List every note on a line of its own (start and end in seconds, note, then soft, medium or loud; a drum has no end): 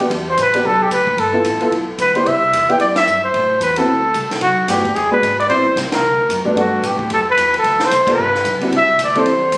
0.00 0.10 B3 medium
0.00 0.10 D4 medium
0.00 0.10 F#4 medium
0.00 0.10 G4 medium
0.00 muted upright bass stroke soft
0.10 0.36 E2 medium
0.10 kick soft
0.10 ride medium
0.30 0.38 C5 medium
0.37 0.63 A1 medium
0.37 kick soft
0.37 hi-hat pedal medium
0.37 ride medium
0.41 0.68 B4 medium
0.54 0.64 B3 medium
0.54 0.64 D4 medium
0.54 0.64 F#4 medium
0.54 0.64 G4 medium
0.54 ride medium
0.64 0.90 B1 medium
0.64 0.84 A4 medium
0.64 kick soft
0.83 0.92 G4 medium
0.91 1.17 D2 medium
0.91 1.21 B4 medium
0.91 kick soft
0.91 hi-hat pedal medium
0.91 ride medium
1.07 kick medium
1.17 1.44 G1 medium
1.17 1.73 A4 medium
1.17 kick soft
1.17 ride medium
1.33 1.43 B3 medium
1.33 1.44 E4 medium
1.33 1.44 F4 medium
1.33 1.44 A4 medium
1.44 1.60 A1 medium
1.44 kick soft
1.44 hi-hat pedal medium
1.44 ride medium
1.61 1.71 B3 medium
1.61 1.71 E4 medium
1.61 1.71 F4 medium
1.61 1.71 A4 medium
1.61 muted upright bass stroke soft
1.61 ride soft
1.71 1.98 B1 medium
1.71 kick soft
1.71 ride medium
1.98 2.25 D2 medium
1.98 2.17 B4 medium
1.98 kick soft
1.98 hi-hat pedal medium
1.98 ride medium
2.15 2.25 B3 medium
2.15 2.25 D4 medium
2.15 2.25 E4 medium
2.15 2.25 G4 medium
2.15 2.28 C5 medium
2.15 ride soft
2.26 2.52 C2 medium
2.26 2.72 E5 medium
2.26 kick soft
2.26 ride medium
2.53 2.79 E2 medium
2.53 kick soft
2.53 hi-hat pedal medium
2.53 ride medium
2.69 2.79 B3 medium
2.69 2.79 D4 medium
2.69 2.79 E4 medium
2.69 2.79 G4 medium
2.69 2.80 G5 medium
2.69 ride soft
2.79 3.06 F#2 medium
2.79 2.88 D5 medium
2.79 kick soft
2.79 ride medium
2.96 3.21 E5 loud
2.96 snare medium
2.96 ride medium
3.07 3.33 G2 medium
3.07 hi-hat pedal medium
3.24 3.58 C5 medium
3.34 3.60 A2 medium
3.34 kick soft
3.34 ride medium
3.61 3.87 E2 medium
3.61 3.80 B4 medium
3.61 kick soft
3.61 hi-hat pedal medium
3.61 ride medium
3.76 3.87 B3 medium
3.76 3.87 C4 medium
3.76 3.87 E4 medium
3.76 3.87 F#4 medium
3.76 4.31 A4 medium
3.76 ride medium
3.87 4.14 D2 medium
3.87 kick soft
4.14 4.40 C2 medium
4.14 kick soft
4.14 hi-hat pedal soft
4.14 ride medium
4.31 snare soft
4.31 ride soft
4.41 4.67 B1 medium
4.41 4.71 F#4 medium
4.41 kick soft
4.41 ride medium
4.68 4.94 G1 medium
4.68 4.83 A3 soft
4.68 4.84 B3 soft
4.68 4.84 D4 medium
4.68 4.84 F#4 medium
4.68 4.97 G4 medium
4.68 kick soft
4.68 snare soft
4.68 hi-hat pedal medium
4.68 ride medium
4.85 kick soft
4.85 ride soft
4.95 5.22 E1 medium
4.95 5.11 G#4 medium
4.95 kick soft
4.95 ride medium
5.11 5.21 G#3 medium
5.11 5.21 B3 medium
5.11 5.21 D4 medium
5.11 5.21 F#4 medium
5.11 5.37 B4 loud
5.22 5.48 G#1 medium
5.22 kick soft
5.22 hi-hat pedal medium
5.22 ride medium
5.40 5.44 D5 medium
5.40 ride soft
5.49 5.75 A1 medium
5.49 5.64 G3 medium
5.49 5.64 B3 medium
5.49 5.64 C4 medium
5.49 5.64 E4 medium
5.49 5.74 C5 medium
5.49 kick soft
5.49 ride medium
5.76 6.01 C2 medium
5.76 kick soft
5.76 snare soft
5.76 hi-hat pedal medium
5.76 ride medium
5.92 6.43 A#4 medium
5.92 snare medium
5.92 ride medium
6.02 6.29 D2 medium
6.29 6.55 F#2 medium
6.29 kick soft
6.29 hi-hat pedal medium
6.29 ride medium
6.45 6.81 G2 medium
6.45 6.81 F#3 medium
6.45 6.81 A3 medium
6.45 6.55 B3 medium
6.45 6.55 D4 medium
6.55 6.81 G2 medium
6.55 6.97 G3 medium
6.55 6.96 B3 medium
6.55 6.96 D4 medium
6.55 6.97 F#4 medium
6.55 6.88 F#4 medium
6.55 6.97 A4 medium
6.55 kick soft
6.55 ride medium
6.82 7.09 A2 medium
6.82 kick soft
6.82 hi-hat pedal medium
6.82 ride medium
6.86 7.12 G4 medium
6.99 kick medium
7.09 7.36 F#2 medium
7.09 kick soft
7.09 ride medium
7.14 7.20 A4 medium
7.30 7.54 B4 medium
7.37 7.63 E2 medium
7.37 kick soft
7.37 hi-hat pedal soft
7.37 ride medium
7.54 7.86 A4 medium
7.54 ride soft
7.64 7.79 D2 medium
7.64 kick soft
7.64 ride medium
7.80 muted upright bass stroke soft
7.80 snare medium
7.85 8.10 C5 medium
7.90 8.17 C2 medium
7.90 kick soft
7.90 hi-hat pedal medium
7.90 ride medium
8.07 8.17 G3 medium
8.07 8.17 B3 medium
8.07 8.17 D4 medium
8.07 8.17 F4 medium
8.07 8.17 A4 medium
8.07 kick medium
8.07 ride medium
8.13 8.60 B4 medium
8.18 8.44 G1 medium
8.35 snare soft
8.45 8.60 B1 medium
8.45 kick soft
8.45 hi-hat pedal medium
8.45 ride medium
8.61 8.71 G3 medium
8.61 8.71 C4 medium
8.61 8.71 D4 medium
8.61 8.71 E4 medium
8.61 8.72 F#4 medium
8.61 muted upright bass stroke soft
8.61 ride soft
8.71 8.98 C2 medium
8.71 kick soft
8.71 ride medium
8.77 8.99 E5 loud
8.99 9.25 D2 medium
8.99 kick soft
8.99 hi-hat pedal medium
8.99 ride medium
9.04 9.20 D5 medium
9.15 9.25 G3 medium
9.15 9.25 C4 medium
9.15 9.25 D4 medium
9.15 9.25 E4 medium
9.15 9.25 A4 medium
9.15 9.58 C5 medium
9.15 ride soft
9.25 9.51 E2 medium
9.25 kick soft
9.25 ride medium
9.52 9.58 G2 medium
9.52 kick soft
9.52 hi-hat pedal medium
9.52 ride medium